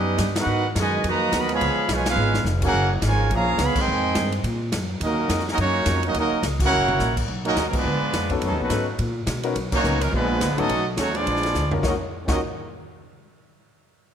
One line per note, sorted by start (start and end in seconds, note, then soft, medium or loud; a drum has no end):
0.00 0.17 F#2 loud
0.00 0.31 G3 medium
0.00 0.31 B3 medium
0.00 0.33 C#4 medium
0.00 0.32 D#4 medium
0.00 0.33 G4 medium
0.00 0.33 B4 medium
0.00 0.33 D#5 medium
0.18 0.45 G2 loud
0.18 kick soft
0.18 snare medium
0.18 hi-hat pedal medium
0.18 ride medium
0.36 0.65 B3 medium
0.36 0.65 D#4 medium
0.36 0.65 F#4 medium
0.36 0.65 A#4 medium
0.36 0.65 B4 medium
0.36 0.65 F#5 loud
0.36 snare loud
0.36 ride medium
0.46 0.74 G#2 medium
0.75 1.03 F#2 medium
0.75 1.03 B2 medium
0.75 1.03 D#3 medium
0.75 1.03 G#3 medium
0.75 1.04 F#4 medium
0.75 1.04 D#5 medium
0.75 kick soft
0.75 snare medium
0.75 hi-hat pedal medium
0.75 ride medium
0.79 1.04 B4 medium
0.79 1.04 G#5 medium
1.04 1.31 F2 medium
1.04 1.32 D#3 medium
1.04 1.32 F#3 medium
1.04 1.33 A#3 medium
1.04 kick soft
1.04 ride medium
1.08 1.34 F#4 medium
1.08 1.34 B4 medium
1.08 1.35 D#5 medium
1.08 1.34 A#5 loud
1.32 1.60 D#2 medium
1.32 1.49 D#3 medium
1.32 1.49 F#3 medium
1.32 1.48 B3 medium
1.32 kick soft
1.32 snare medium
1.32 hi-hat pedal medium
1.32 ride medium
1.37 1.51 F#4 medium
1.37 1.52 A#4 medium
1.37 1.51 D#5 medium
1.37 1.51 B5 loud
1.49 1.86 F3 medium
1.49 1.87 G#3 medium
1.49 1.86 B3 medium
1.49 ride medium
1.54 1.89 G#4 loud
1.54 1.89 C#5 loud
1.54 1.89 F5 loud
1.54 1.89 B5 loud
1.60 1.75 C#2 medium
1.60 kick soft
1.60 ride medium
1.76 muted upright bass stroke soft
1.88 2.15 B1 medium
1.88 2.05 B2 medium
1.88 2.05 F3 medium
1.88 2.05 G#3 medium
1.88 2.07 B4 medium
1.88 2.07 C#5 medium
1.88 kick soft
1.88 snare medium
1.88 hi-hat pedal medium
1.88 ride medium
1.93 2.07 F4 medium
1.93 2.07 G#5 loud
2.06 2.44 G#3 medium
2.06 2.44 B3 medium
2.06 2.44 C#4 medium
2.06 2.44 F4 medium
2.06 2.44 G#4 medium
2.06 2.44 B4 medium
2.06 2.44 F5 loud
2.06 snare medium
2.06 ride medium
2.16 2.44 G#1 medium
2.34 snare medium
2.44 2.72 F1 medium
2.44 snare medium
2.44 hi-hat pedal medium
2.62 2.89 A#3 medium
2.62 2.89 C#4 medium
2.62 2.90 C#4 medium
2.62 2.89 F#4 medium
2.62 2.90 G#4 medium
2.62 2.90 A#4 medium
2.62 2.90 F#5 loud
2.62 kick medium
2.62 crash medium
2.73 3.01 F#1 medium
2.73 kick soft
3.02 3.30 G#1 medium
3.02 3.30 C#3 medium
3.02 3.30 F3 medium
3.02 3.30 G#3 medium
3.02 3.30 F4 medium
3.02 3.30 A#4 medium
3.02 3.30 C#5 medium
3.02 3.30 G#5 loud
3.02 snare medium
3.02 hi-hat pedal medium
3.02 ride medium
3.30 3.58 A#1 loud
3.30 3.60 C#3 medium
3.30 3.59 F3 loud
3.30 3.59 A#3 medium
3.30 3.61 G#4 medium
3.30 3.60 C#5 medium
3.30 3.61 F5 medium
3.30 3.61 A#5 loud
3.30 kick soft
3.30 ride medium
3.58 3.74 C#2 medium
3.58 3.76 B3 medium
3.58 kick soft
3.58 snare medium
3.58 hi-hat pedal medium
3.58 ride medium
3.62 3.78 G#4 medium
3.62 3.77 C#5 medium
3.62 3.78 F5 medium
3.62 3.78 B5 loud
3.75 4.33 D#3 loud
3.75 4.33 G#3 medium
3.75 4.33 C4 medium
3.75 muted upright bass stroke soft
3.75 kick loud
3.75 crash medium
3.80 4.35 G#4 medium
3.80 4.35 D#5 loud
3.80 4.35 G5 medium
3.80 4.35 C6 loud
3.87 4.15 F2 medium
4.15 4.43 G2 loud
4.15 kick soft
4.15 snare medium
4.15 hi-hat pedal medium
4.15 ride medium
4.32 ride medium
4.44 4.71 A#2 loud
4.44 kick soft
4.44 ride medium
4.72 5.00 F#2 medium
4.72 kick soft
4.72 snare medium
4.72 hi-hat pedal medium
4.72 ride medium
5.00 5.28 D#2 medium
5.00 5.44 F#3 medium
5.00 5.44 A#3 medium
5.00 5.44 C#4 medium
5.00 5.44 D#4 medium
5.00 5.44 F#4 medium
5.00 5.44 A#4 medium
5.00 5.44 D#5 medium
5.00 kick soft
5.00 ride medium
5.29 5.57 F2 loud
5.29 kick soft
5.29 snare medium
5.29 hi-hat pedal medium
5.29 ride medium
5.39 snare soft
5.48 5.55 F#3 medium
5.48 5.55 A#3 medium
5.48 5.55 C#4 medium
5.48 5.55 D#4 medium
5.48 5.55 A#4 medium
5.48 5.55 D#5 loud
5.48 snare medium
5.52 5.56 F#4 medium
5.57 5.85 F#2 loud
5.57 6.01 A#3 medium
5.57 6.02 A#3 medium
5.57 6.02 C#4 medium
5.57 6.01 D#4 medium
5.57 6.01 F#4 medium
5.57 6.01 C#5 loud
5.57 kick soft
5.57 ride medium
5.61 6.02 F#3 medium
5.86 6.13 F2 loud
5.86 kick soft
5.86 snare medium
5.86 hi-hat pedal medium
5.86 ride medium
6.03 6.16 F#3 medium
6.03 6.16 A#3 medium
6.03 6.16 C#4 medium
6.03 6.16 D#4 medium
6.03 6.16 F#4 medium
6.03 6.16 A#4 medium
6.03 6.16 D#5 loud
6.03 ride medium
6.14 6.30 D#2 medium
6.14 6.43 F#3 medium
6.14 6.43 A#3 loud
6.14 6.43 D#4 medium
6.14 6.43 F#4 medium
6.14 6.43 A#4 medium
6.14 kick soft
6.14 ride medium
6.18 6.43 C#4 medium
6.18 6.43 D#5 loud
6.31 muted upright bass stroke soft
6.43 6.70 C#2 loud
6.43 kick soft
6.43 snare medium
6.43 hi-hat pedal medium
6.43 ride medium
6.60 7.14 A#3 medium
6.60 7.14 C#4 medium
6.60 7.14 F#4 medium
6.60 kick medium
6.60 crash loud
6.64 7.15 E4 medium
6.64 7.15 A#4 loud
6.64 7.15 C#5 loud
6.64 7.15 F#5 loud
6.72 6.99 F#1 loud
6.88 mid tom medium
6.99 7.27 A#1 medium
6.99 snare medium
6.99 hi-hat pedal medium
7.17 kick medium
7.17 crash medium
7.28 7.55 B1 medium
7.28 kick soft
7.43 7.63 F#3 medium
7.43 7.63 A#3 medium
7.43 7.64 C#4 medium
7.43 7.63 D#4 medium
7.43 7.64 F#4 medium
7.43 7.64 A#4 medium
7.43 7.64 D#5 loud
7.43 ride soft
7.56 7.72 D#2 medium
7.56 kick soft
7.56 snare medium
7.56 hi-hat pedal medium
7.56 ride medium
7.67 8.29 F3 medium
7.67 8.29 G#3 medium
7.67 7.74 A#4 medium
7.71 8.31 G#3 loud
7.71 8.29 B3 medium
7.71 8.31 B4 loud
7.71 muted upright bass stroke soft
7.71 kick medium
7.71 crash medium
7.76 8.31 D4 loud
7.76 8.31 F4 medium
7.84 8.00 D2 loud
8.01 muted upright bass stroke soft
8.13 8.41 F2 medium
8.13 kick soft
8.13 snare medium
8.13 hi-hat pedal medium
8.13 ride medium
8.30 8.68 B3 medium
8.30 8.68 C#4 medium
8.30 8.68 D#4 medium
8.30 8.68 F#4 medium
8.30 8.69 A4 medium
8.30 kick medium
8.30 ride medium
8.41 8.51 F#2 medium
8.41 8.57 D#3 medium
8.41 8.58 F#3 medium
8.41 8.59 F#3 medium
8.41 8.58 A3 medium
8.41 8.59 C#4 medium
8.41 8.59 D#4 medium
8.41 8.59 A4 medium
8.41 kick soft
8.41 ride medium
8.51 8.59 D#2 medium
8.59 8.69 B1 medium
8.59 8.85 D#3 medium
8.59 8.85 F#3 medium
8.59 8.85 B3 medium
8.59 8.87 F#4 medium
8.59 8.87 B4 medium
8.63 8.87 A3 medium
8.63 8.87 D#4 medium
8.70 8.98 G#2 medium
8.70 8.85 B3 medium
8.70 8.85 C#4 medium
8.70 8.85 D#4 medium
8.70 8.86 F#4 medium
8.70 8.86 A4 medium
8.70 kick soft
8.70 snare medium
8.70 hi-hat pedal medium
8.70 ride medium
8.99 9.26 A#2 medium
8.99 kick soft
8.99 ride medium
9.27 9.54 B2 loud
9.27 kick soft
9.27 snare medium
9.27 hi-hat pedal medium
9.27 ride medium
9.43 9.54 B3 medium
9.43 9.54 C#4 medium
9.43 9.54 D#4 medium
9.43 9.55 F#4 medium
9.43 9.54 A#4 medium
9.43 ride medium
9.55 9.83 B1 medium
9.55 kick soft
9.55 ride medium
9.72 9.98 F#3 medium
9.72 9.98 A#3 medium
9.72 9.99 A#3 medium
9.72 9.99 C#4 medium
9.72 9.99 D#4 medium
9.72 9.99 F#4 medium
9.72 9.99 C#5 medium
9.72 kick medium
9.72 crash medium
9.84 10.11 C#2 loud
9.84 9.99 B3 medium
9.84 10.00 C#4 medium
9.84 9.99 D#4 medium
9.84 10.00 F#4 medium
9.84 10.00 A#4 medium
9.84 hi-hat pedal medium
10.00 10.12 D#3 medium
10.00 10.12 F#3 medium
10.00 10.13 F#3 medium
10.00 10.12 A#3 medium
10.00 10.13 C#4 medium
10.00 10.13 D#4 medium
10.00 10.12 A#4 medium
10.00 ride medium
10.10 10.40 A#1 loud
10.10 10.53 F3 medium
10.10 10.53 G#3 medium
10.10 10.55 G#3 medium
10.10 10.53 B3 medium
10.10 10.55 F4 medium
10.10 10.55 B4 loud
10.10 kick soft
10.14 10.55 D4 medium
10.41 10.52 D2 medium
10.41 kick soft
10.41 snare medium
10.41 hi-hat pedal medium
10.41 ride medium
10.51 10.59 A#1 medium
10.55 10.85 F#3 loud
10.55 10.85 A3 loud
10.55 10.68 B3 medium
10.55 10.68 C#4 medium
10.55 10.86 C#4 medium
10.55 10.85 D#4 medium
10.55 10.68 D#4 medium
10.55 10.86 F#4 medium
10.55 10.68 F#4 medium
10.55 10.86 A4 loud
10.55 10.68 A4 medium
10.55 10.86 D#5 loud
10.55 ride medium
10.60 10.68 G#1 medium
10.69 10.97 B1 medium
10.69 kick soft
10.69 ride medium
10.95 11.25 D#2 medium
10.95 11.12 F#3 medium
10.95 11.12 A3 medium
10.95 11.13 A3 medium
10.95 11.12 C#4 medium
10.95 11.13 D#4 medium
10.95 11.13 F#4 medium
10.95 11.13 C#5 medium
10.95 kick soft
10.95 snare medium
10.95 hi-hat pedal medium
10.95 ride medium
11.12 11.70 F3 medium
11.12 11.70 G#3 medium
11.12 11.71 B3 medium
11.12 11.70 D4 medium
11.12 11.71 F4 medium
11.12 11.72 G#4 medium
11.12 11.71 D5 loud
11.12 ride medium
11.26 11.53 A#1 medium
11.26 kick soft
11.26 ride medium
11.36 snare soft
11.43 snare medium
11.43 ride medium
11.54 11.82 D2 medium
11.54 snare medium
11.54 hi-hat pedal medium
11.71 11.82 C#4 medium
11.71 11.83 D#4 medium
11.71 11.83 F4 medium
11.71 11.83 F#4 soft
11.71 11.83 A#4 medium
11.71 floor tom medium
11.83 11.92 D#2 medium
11.83 11.92 D#3 medium
11.83 11.92 A#3 medium
11.83 11.92 C#4 medium
11.83 11.93 C#4 medium
11.83 11.93 D#4 medium
11.83 11.94 F4 medium
11.83 11.92 F#4 medium
11.83 11.94 F#4 medium
11.83 11.93 F#4 medium
11.83 11.93 A#4 medium
11.83 11.94 A#4 medium
11.83 11.93 D#5 medium
11.83 kick medium
11.83 snare medium
12.26 12.39 D#2 loud
12.26 12.38 D#3 medium
12.26 12.38 A#3 medium
12.26 12.38 C#4 medium
12.26 12.39 C#4 medium
12.26 12.40 C#4 medium
12.26 12.39 D#4 medium
12.26 12.39 F4 medium
12.26 12.38 F#4 medium
12.26 12.39 F#4 medium
12.26 12.39 A#4 medium
12.26 12.39 D#5 medium
12.26 kick loud
12.26 snare medium
12.26 crash medium